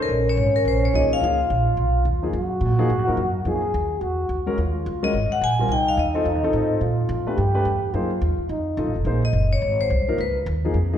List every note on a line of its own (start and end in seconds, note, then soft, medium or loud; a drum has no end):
0.00 0.10 A4 medium
0.00 0.29 A#4 medium
0.08 0.36 A#1 medium
0.08 1.24 C#4 medium
0.29 0.54 C#5 medium
0.37 0.65 G#1 medium
0.56 0.67 A#4 medium
0.65 0.93 A#1 medium
0.65 0.84 C5 medium
0.85 0.95 C#5 medium
0.94 1.09 C2 medium
0.94 1.21 F3 medium
0.94 1.21 A#3 soft
0.94 1.22 D#4 soft
0.94 1.22 G#4 medium
0.94 1.12 D#5 medium
1.11 1.18 F5 medium
1.11 muted upright bass stroke soft
1.22 1.49 C#2 medium
1.22 1.37 F3 medium
1.22 1.37 A#3 medium
1.22 1.37 D#4 medium
1.22 2.32 F4 loud
1.22 1.37 G#4 medium
1.22 1.75 F5 medium
1.50 1.76 A#1 medium
1.77 2.05 B1 medium
2.05 2.33 D#2 medium
2.23 2.33 F3 medium
2.23 2.33 A#3 medium
2.23 2.33 D#4 medium
2.23 2.33 G#4 medium
2.33 2.60 F#2 medium
2.33 3.41 F#4 loud
2.61 2.88 A#2 medium
2.79 2.89 F3 medium
2.79 2.89 A#3 medium
2.79 2.89 D#4 medium
2.79 2.89 G#4 medium
2.90 2.99 G#2 medium
2.99 3.08 F#2 medium
3.07 3.17 F2 medium
3.07 3.17 F3 medium
3.07 3.17 A#3 medium
3.07 3.17 D#4 medium
3.07 3.17 A#4 medium
3.17 3.45 F#2 medium
3.45 3.73 F2 medium
3.45 3.61 F3 medium
3.45 3.61 A#3 soft
3.45 3.61 D#4 medium
3.45 4.03 G#4 loud
3.45 3.61 G#4 medium
3.74 4.00 D#2 medium
4.01 4.29 E2 medium
4.01 4.46 F#4 loud
4.29 4.57 D2 medium
4.46 4.57 G#3 medium
4.46 4.57 C#4 medium
4.46 4.57 F#4 medium
4.46 4.57 A#4 medium
4.57 4.85 D#2 medium
4.57 5.39 F4 medium
4.86 5.13 C#2 medium
5.03 5.13 G#3 medium
5.03 5.13 C#4 medium
5.03 5.13 F#4 medium
5.03 5.13 A#4 medium
5.03 5.32 D#5 medium
5.13 5.29 G#1 medium
5.30 5.42 F#5 medium
5.30 muted upright bass stroke soft
5.41 5.68 A#1 medium
5.41 5.72 G#5 loud
5.59 5.69 G3 medium
5.59 5.69 C4 medium
5.59 5.69 F4 medium
5.59 5.70 A#4 medium
5.69 5.96 C2 medium
5.69 6.22 D#4 medium
5.69 5.86 G5 loud
5.88 5.98 F5 medium
5.97 6.25 D#2 medium
5.97 6.67 D#5 medium
6.14 6.25 C4 medium
6.14 6.25 D#4 medium
6.14 6.25 F4 medium
6.14 6.25 A4 medium
6.25 6.35 F2 medium
6.25 6.83 D#4 medium
6.35 6.44 D#2 medium
6.43 6.53 C2 medium
6.43 6.80 C4 medium
6.43 6.80 D#4 medium
6.43 6.80 F4 medium
6.43 6.80 A4 medium
6.53 6.80 A2 medium
6.81 7.08 A#2 medium
6.81 7.36 F4 medium
7.09 7.25 F2 medium
7.26 7.37 A3 medium
7.26 7.37 D4 medium
7.26 7.37 G4 medium
7.26 7.37 B4 medium
7.26 muted upright bass stroke soft
7.37 7.64 G2 medium
7.37 7.95 G4 loud
7.55 7.65 A3 medium
7.55 7.65 D4 medium
7.55 7.65 G4 medium
7.55 7.65 B4 medium
7.65 7.93 E2 medium
7.94 8.21 F#2 medium
7.94 8.09 A#3 medium
7.94 8.09 D#4 medium
7.94 8.49 F4 medium
7.94 8.09 G#4 medium
7.94 8.10 C5 medium
8.21 8.37 D#2 medium
8.38 muted upright bass stroke soft
8.49 8.77 F2 medium
8.49 8.91 D#4 medium
8.77 8.86 C2 medium
8.77 8.93 D#4 medium
8.77 8.93 F4 medium
8.77 8.93 A4 medium
8.77 8.93 D#5 medium
8.86 8.95 A1 medium
8.96 9.04 F1 medium
9.05 9.32 A#1 medium
9.05 9.21 A#3 medium
9.05 9.21 D#4 medium
9.05 9.21 G#4 medium
9.05 9.21 C5 medium
9.25 9.50 D#5 medium
9.33 9.61 F#1 medium
9.53 9.78 C#5 medium
9.62 9.89 G#1 medium
9.81 10.17 C5 medium
9.90 10.06 C2 medium
10.07 10.18 F3 medium
10.07 10.18 A#3 medium
10.07 10.18 D#4 medium
10.07 10.18 A#4 medium
10.07 muted upright bass stroke soft
10.18 10.46 C#2 medium
10.18 10.36 B4 medium
10.46 10.73 D#2 loud
10.65 10.74 F3 medium
10.65 10.74 A#3 medium
10.65 10.75 D#4 medium
10.65 10.75 G#4 medium
10.74 10.98 F2 medium
10.93 10.98 F3 medium
10.93 10.98 A#3 medium
10.93 10.98 D#4 medium
10.93 10.98 G#4 medium